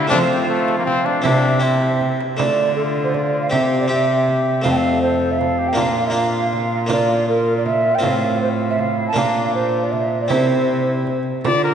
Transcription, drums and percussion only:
0.12 frame drum medium
0.68 frame drum medium
0.87 frame drum soft
1.06 frame drum soft
1.25 frame drum medium
1.82 frame drum soft
2.01 frame drum soft
2.21 frame drum soft
2.39 frame drum medium
3.14 frame drum soft
3.53 frame drum medium
4.28 frame drum soft
4.65 frame drum medium
5.41 frame drum soft
5.77 frame drum medium
6.53 frame drum soft
6.89 frame drum medium
7.66 frame drum soft
8.03 frame drum medium
8.79 frame drum soft
9.16 frame drum medium
9.93 frame drum soft
10.30 frame drum medium
11.07 frame drum soft
11.45 frame drum medium

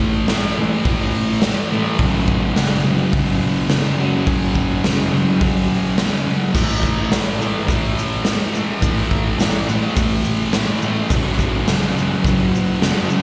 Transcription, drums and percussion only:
0.28 snare loud
0.28 open hi-hat medium
0.85 kick loud
0.85 open hi-hat medium
1.42 snare loud
1.42 open hi-hat medium
1.98 kick loud
1.98 open hi-hat medium
2.28 kick medium
2.56 snare loud
2.56 open hi-hat medium
3.13 kick loud
3.13 open hi-hat medium
3.70 snare loud
3.70 open hi-hat medium
4.27 kick loud
4.27 open hi-hat medium
4.55 kick medium
4.84 snare loud
4.84 open hi-hat medium
5.41 kick loud
5.41 open hi-hat medium
5.98 snare loud
5.98 open hi-hat medium
6.55 kick loud
6.55 crash loud
6.55 shaker loud
6.83 kick medium
6.83 shaker medium
7.12 snare loud
7.12 open hi-hat medium
7.12 shaker loud
7.42 shaker medium
7.68 kick loud
7.68 open hi-hat medium
7.68 shaker loud
7.99 shaker medium
8.25 snare loud
8.25 open hi-hat medium
8.25 shaker medium
8.55 shaker medium
8.82 kick loud
8.82 open hi-hat medium
8.82 shaker loud
9.11 kick medium
9.40 snare loud
9.40 open hi-hat medium
9.40 shaker medium
9.69 shaker medium
9.96 kick loud
9.96 open hi-hat medium
9.96 shaker loud
10.24 shaker medium
10.53 snare loud
10.53 open hi-hat medium
10.53 shaker loud
10.82 shaker medium
11.10 kick loud
11.10 open hi-hat medium
11.10 shaker loud
11.39 kick medium
11.39 shaker medium
11.68 snare loud
11.68 open hi-hat medium
11.68 shaker loud
11.98 shaker medium
12.24 kick loud
12.24 open hi-hat medium
12.24 shaker loud
12.55 shaker medium
12.82 snare loud
12.82 open hi-hat medium
12.82 shaker medium
13.10 shaker medium

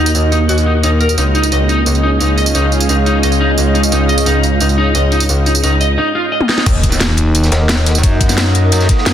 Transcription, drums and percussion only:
0.06 tambourine medium
0.15 tambourine soft
0.32 tambourine soft
0.49 tambourine soft
0.58 tambourine soft
0.83 tambourine soft
1.00 tambourine soft
1.09 tambourine medium
1.18 tambourine soft
1.35 tambourine soft
1.43 tambourine medium
1.52 tambourine soft
1.69 tambourine soft
1.86 tambourine soft
1.95 tambourine soft
2.20 tambourine soft
2.38 tambourine soft
2.46 tambourine medium
2.55 tambourine soft
2.72 tambourine soft
2.80 tambourine medium
2.89 tambourine soft
3.06 tambourine soft
3.23 tambourine soft
3.32 tambourine soft
3.58 tambourine soft
3.75 tambourine soft
3.83 tambourine medium
3.92 tambourine medium
4.09 tambourine soft
4.18 tambourine medium
4.26 tambourine medium
4.43 tambourine soft
4.60 tambourine medium
4.69 tambourine soft
4.95 tambourine soft
5.12 tambourine soft
5.20 tambourine medium
5.29 tambourine soft
5.46 tambourine soft
5.55 tambourine medium
5.63 tambourine medium
5.81 tambourine soft
6.41 high tom soft
6.49 snare medium
6.58 snare medium
6.66 kick loud
6.66 closed hi-hat medium
6.66 crash loud
6.66 ride medium
6.66 tambourine medium
6.83 kick loud
6.83 closed hi-hat medium
6.83 ride medium
6.83 tambourine soft
6.92 snare soft
6.92 ride soft
6.92 tambourine medium
7.00 snare loud
7.00 closed hi-hat medium
7.00 ride medium
7.00 tambourine medium
7.09 ride medium
7.17 closed hi-hat loud
7.17 ride medium
7.17 tambourine soft
7.35 closed hi-hat medium
7.35 ride medium
7.35 tambourine medium
7.43 snare soft
7.43 tambourine soft
7.52 snare medium
7.52 closed hi-hat loud
7.52 ride medium
7.69 snare loud
7.69 closed hi-hat medium
7.69 ride medium
7.69 tambourine medium
7.86 snare soft
7.86 open hi-hat medium
7.86 ride medium
7.86 tambourine soft
7.95 tambourine medium
8.03 kick loud
8.03 closed hi-hat medium
8.03 ride medium
8.03 tambourine medium
8.21 kick loud
8.21 closed hi-hat medium
8.21 ride medium
8.21 tambourine soft
8.29 snare soft
8.29 ride soft
8.29 tambourine medium
8.38 snare loud
8.38 closed hi-hat medium
8.38 ride medium
8.38 tambourine medium
8.55 closed hi-hat loud
8.55 ride medium
8.55 tambourine soft
8.72 closed hi-hat medium
8.72 ride medium
8.72 tambourine medium
8.81 snare soft
8.81 tambourine soft
8.89 kick loud
8.89 snare soft
8.89 closed hi-hat loud
8.89 ride medium
8.98 snare soft
9.06 snare loud
9.06 closed hi-hat medium
9.06 ride loud
9.06 tambourine medium

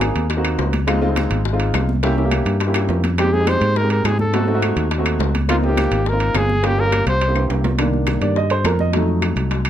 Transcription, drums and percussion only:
0.01 high bongo medium
0.01 high conga medium
0.01 high timbale medium
0.01 low timbale medium
0.01 claves medium
0.16 high bongo soft
0.16 high timbale medium
0.30 high bongo medium
0.30 high conga soft
0.30 high timbale medium
0.45 high conga soft
0.45 high timbale medium
0.45 claves medium
0.59 high bongo medium
0.59 low bongo medium
0.59 high conga soft
0.59 low timbale medium
0.73 high bongo soft
0.73 high conga medium
0.73 high timbale medium
0.88 high bongo medium
0.88 high conga soft
0.88 high timbale medium
0.88 claves medium
1.02 high bongo soft
1.02 high conga soft
1.16 high bongo medium
1.16 high conga medium
1.16 high timbale medium
1.16 low timbale medium
1.16 claves medium
1.31 high bongo soft
1.31 high conga soft
1.31 high timbale medium
1.45 high bongo medium
1.45 high conga soft
1.60 high conga soft
1.60 high timbale medium
1.74 high bongo medium
1.74 low bongo medium
1.74 high conga medium
1.74 high timbale medium
1.74 low timbale medium
1.74 claves medium
1.89 high bongo soft
1.89 high conga medium
2.03 high bongo medium
2.03 high conga soft
2.03 high timbale medium
2.18 high bongo soft
2.18 high conga soft
2.31 high bongo medium
2.31 high conga medium
2.31 high timbale medium
2.31 low timbale medium
2.31 claves medium
2.46 high bongo soft
2.46 high timbale medium
2.60 high bongo medium
2.60 high conga soft
2.60 high timbale medium
2.74 high bongo loud
2.74 high conga soft
2.74 high timbale loud
2.74 claves medium
2.89 low bongo medium
2.89 high conga soft
2.89 low timbale medium
3.04 low bongo medium
3.04 high conga medium
3.04 high timbale medium
3.18 high bongo medium
3.18 high conga soft
3.18 high timbale medium
3.18 claves medium
3.34 high bongo soft
3.34 high conga soft
3.47 high bongo medium
3.47 high conga medium
3.47 high timbale medium
3.47 low timbale medium
3.47 claves medium
3.61 high bongo soft
3.61 high conga soft
3.61 high timbale medium
3.76 high bongo medium
3.76 high conga soft
3.90 high conga soft
3.90 high timbale medium
4.05 high bongo medium
4.05 low bongo medium
4.05 high conga medium
4.05 high timbale medium
4.05 low timbale medium
4.05 claves medium
4.19 high bongo soft
4.19 high conga medium
4.34 high bongo medium
4.34 high conga soft
4.34 high timbale medium
4.48 high bongo soft
4.48 high conga soft
4.62 high bongo medium
4.62 high conga medium
4.62 high timbale medium
4.62 low timbale medium
4.62 claves medium
4.77 high bongo soft
4.77 high timbale medium
4.91 high bongo medium
4.91 high conga soft
4.91 high timbale medium
5.06 high conga soft
5.06 high timbale medium
5.06 claves medium
5.20 high bongo medium
5.20 low bongo medium
5.20 high conga soft
5.20 low timbale medium
5.35 high bongo soft
5.35 high conga medium
5.35 high timbale medium
5.49 high bongo medium
5.49 high conga soft
5.49 high timbale medium
5.49 claves medium
5.63 high bongo soft
5.63 high conga soft
5.77 high bongo medium
5.77 high conga medium
5.77 high timbale loud
5.77 low timbale medium
5.77 claves medium
5.92 high bongo soft
5.92 high conga soft
5.92 high timbale medium
6.06 high bongo medium
6.06 high conga soft
6.20 high conga soft
6.20 high timbale medium
6.35 high bongo medium
6.35 low bongo medium
6.35 high conga medium
6.35 high timbale medium
6.35 low timbale medium
6.35 claves medium
6.50 high bongo soft
6.50 high conga medium
6.64 high bongo medium
6.64 high conga soft
6.64 high timbale medium
6.78 high bongo soft
6.78 high conga soft
6.92 high bongo medium
6.92 high conga medium
6.92 high timbale medium
6.92 low timbale medium
6.92 claves medium
7.07 high bongo loud
7.07 high timbale medium
7.21 high bongo medium
7.21 high conga soft
7.21 high timbale medium
7.36 high conga soft
7.36 high timbale medium
7.36 claves medium
7.50 low bongo medium
7.50 high conga soft
7.50 high timbale medium
7.64 low bongo medium
7.64 high conga medium
7.64 low timbale loud
7.79 high bongo medium
7.79 high conga soft
7.79 high timbale loud
7.79 claves medium
7.93 high bongo soft
7.93 high conga soft
8.07 high bongo medium
8.07 high conga medium
8.07 high timbale medium
8.07 low timbale medium
8.07 claves medium
8.22 high bongo soft
8.22 high conga soft
8.22 high timbale medium
8.36 high bongo medium
8.36 high conga soft
8.50 high conga soft
8.50 high timbale medium
8.65 high bongo medium
8.65 low bongo medium
8.65 high conga medium
8.65 high timbale medium
8.65 low timbale medium
8.65 claves medium
8.79 high bongo soft
8.79 high conga medium
8.93 high bongo medium
8.93 high conga soft
8.93 high timbale medium
9.08 high bongo soft
9.08 high conga soft
9.22 high bongo medium
9.22 high conga soft
9.22 high timbale medium
9.22 low timbale medium
9.22 claves medium
9.37 high bongo soft
9.37 high timbale medium
9.51 high bongo medium
9.51 high conga soft
9.51 high timbale medium
9.65 high conga soft
9.65 high timbale medium
9.65 claves medium

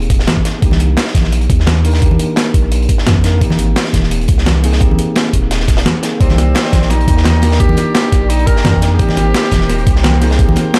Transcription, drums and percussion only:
0.02 closed hi-hat soft
0.10 kick loud
0.10 closed hi-hat medium
0.19 snare medium
0.27 snare loud
0.27 closed hi-hat medium
0.27 high conga medium
0.37 kick medium
0.45 snare medium
0.45 closed hi-hat medium
0.62 kick loud
0.62 closed hi-hat medium
0.71 snare soft
0.71 high conga medium
0.80 closed hi-hat medium
0.97 snare loud
0.97 closed hi-hat medium
1.07 snare soft
1.15 kick medium
1.15 snare medium
1.15 closed hi-hat medium
1.15 high conga medium
1.24 snare soft
1.32 closed hi-hat medium
1.41 closed hi-hat soft
1.50 kick loud
1.50 closed hi-hat medium
1.60 snare soft
1.67 snare loud
1.67 closed hi-hat medium
1.67 high conga medium
1.85 closed hi-hat medium
1.85 open hi-hat medium
1.94 snare soft
2.02 kick loud
2.02 closed hi-hat medium
2.11 high conga medium
2.19 closed hi-hat medium
2.36 snare loud
2.36 closed hi-hat medium
2.54 kick medium
2.54 closed hi-hat medium
2.72 closed hi-hat medium
2.82 closed hi-hat soft
2.89 kick loud
2.89 closed hi-hat medium
2.98 snare medium
3.07 snare loud
3.07 closed hi-hat medium
3.07 high conga medium
3.16 kick medium
3.24 snare medium
3.24 closed hi-hat medium
3.41 kick loud
3.41 closed hi-hat medium
3.50 snare soft
3.50 high conga medium
3.59 closed hi-hat medium
3.76 snare loud
3.76 closed hi-hat medium
3.85 snare soft
3.93 kick medium
3.93 snare soft
3.93 closed hi-hat medium
3.93 high conga medium
4.03 snare soft
4.11 closed hi-hat medium
4.21 closed hi-hat soft
4.28 kick loud
4.28 closed hi-hat medium
4.28 closed hi-hat loud
4.38 snare medium
4.46 snare loud
4.46 closed hi-hat medium
4.46 high conga medium
4.64 closed hi-hat medium
4.64 open hi-hat medium
4.73 snare soft
4.80 kick loud
4.80 closed hi-hat medium
4.91 high conga medium
4.99 closed hi-hat medium
5.16 snare loud
5.16 closed hi-hat medium
5.33 kick medium
5.33 closed hi-hat medium
5.33 closed hi-hat loud
5.51 snare medium
5.51 closed hi-hat medium
5.60 snare soft
5.68 kick loud
5.68 snare soft
5.68 closed hi-hat medium
5.77 snare loud
5.77 closed hi-hat medium
5.86 snare loud
5.86 closed hi-hat medium
5.86 high conga medium
6.03 snare medium
6.03 closed hi-hat medium
6.03 closed hi-hat loud
6.21 kick loud
6.21 closed hi-hat medium
6.29 snare soft
6.29 high conga medium
6.38 snare soft
6.38 closed hi-hat medium
6.55 snare loud
6.55 closed hi-hat medium
6.65 snare soft
6.72 kick medium
6.72 snare medium
6.72 snare soft
6.72 closed hi-hat medium
6.72 closed hi-hat loud
6.72 high conga medium
6.82 snare soft
6.90 snare soft
6.90 closed hi-hat medium
7.01 closed hi-hat soft
7.08 kick loud
7.08 closed hi-hat medium
7.17 snare soft
7.25 snare loud
7.25 closed hi-hat medium
7.25 high conga medium
7.42 snare soft
7.42 closed hi-hat medium
7.42 open hi-hat medium
7.52 snare medium
7.59 kick loud
7.59 closed hi-hat medium
7.69 high conga medium
7.77 snare soft
7.77 closed hi-hat medium
7.95 snare loud
7.95 closed hi-hat medium
8.12 kick medium
8.12 snare soft
8.12 closed hi-hat medium
8.30 closed hi-hat medium
8.39 closed hi-hat soft
8.47 kick loud
8.47 closed hi-hat medium
8.56 snare medium
8.65 snare loud
8.65 closed hi-hat medium
8.65 high conga loud
8.74 kick medium
8.82 snare medium
8.82 closed hi-hat medium
8.99 kick loud
8.99 closed hi-hat medium
9.09 snare soft
9.09 high conga medium
9.17 snare soft
9.17 closed hi-hat medium
9.34 snare loud
9.34 closed hi-hat medium
9.43 snare soft
9.51 kick medium
9.51 snare medium
9.51 snare soft
9.51 closed hi-hat medium
9.51 high conga medium
9.61 snare soft
9.69 snare soft
9.69 closed hi-hat medium
9.78 closed hi-hat soft
9.87 kick loud
9.87 closed hi-hat medium
9.96 snare soft
10.04 snare loud
10.04 closed hi-hat medium
10.04 high conga medium
10.22 snare soft
10.22 closed hi-hat medium
10.22 open hi-hat medium
10.31 snare medium
10.39 kick loud
10.39 closed hi-hat medium
10.49 high conga loud
10.56 snare soft
10.56 closed hi-hat medium
10.74 snare loud
10.74 closed hi-hat medium

